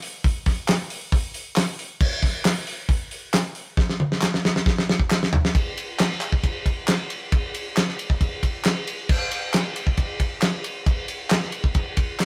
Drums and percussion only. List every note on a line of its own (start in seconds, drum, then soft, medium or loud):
0.02 open hi-hat medium
0.24 kick loud
0.24 open hi-hat medium
0.46 kick medium
0.46 snare soft
0.46 open hi-hat medium
0.68 snare loud
0.68 clap medium
0.68 open hi-hat medium
0.90 open hi-hat medium
1.12 kick loud
1.12 open hi-hat medium
1.34 open hi-hat medium
1.56 snare loud
1.56 clap loud
1.56 open hi-hat loud
1.79 open hi-hat medium
2.01 kick loud
2.01 crash loud
2.23 kick medium
2.23 snare soft
2.23 open hi-hat medium
2.45 snare loud
2.45 clap loud
2.45 open hi-hat medium
2.67 open hi-hat medium
2.89 kick loud
2.89 open hi-hat medium
3.11 open hi-hat medium
3.33 snare loud
3.33 clap loud
3.33 open hi-hat medium
3.55 open hi-hat medium
3.77 kick loud
3.77 snare medium
3.90 snare medium
4.00 high tom medium
4.12 snare medium
4.22 snare medium
4.22 clap loud
4.34 snare medium
4.45 snare medium
4.56 snare medium
4.66 kick loud
4.66 snare medium
4.78 snare medium
4.89 snare loud
5.00 kick medium
5.11 snare loud
5.11 clap loud
5.23 snare medium
5.33 floor tom loud
5.45 snare medium
5.55 kick loud
5.55 ride loud
5.78 ride medium
5.99 snare loud
5.99 clap medium
5.99 ride loud
6.11 snare soft
6.21 clap medium
6.21 ride medium
6.32 kick medium
6.43 kick medium
6.43 ride medium
6.66 kick medium
6.66 ride medium
6.88 snare loud
6.88 clap loud
6.88 ride loud
7.10 ride medium
7.32 kick loud
7.32 ride loud
7.54 ride medium
7.77 snare loud
7.77 clap loud
7.77 ride medium
7.89 snare soft
7.99 ride medium
8.10 kick medium
8.21 kick medium
8.21 ride medium
8.43 kick medium
8.43 ride medium
8.65 snare loud
8.65 clap loud
8.65 ride loud
8.87 ride medium
9.09 kick loud
9.09 crash loud
9.31 ride medium
9.54 snare loud
9.54 clap medium
9.54 ride loud
9.76 ride medium
9.87 kick medium
9.97 kick medium
9.97 ride loud
10.20 kick medium
10.20 ride medium
10.42 snare loud
10.42 clap loud
10.42 ride loud
10.64 ride medium
10.86 kick loud
10.86 ride loud
11.08 ride medium
11.30 snare loud
11.30 clap loud
11.30 ride loud
11.42 snare soft
11.52 ride medium
11.64 kick medium
11.74 kick medium
11.74 ride medium
11.97 kick medium
11.97 ride medium
12.20 snare medium
12.20 clap medium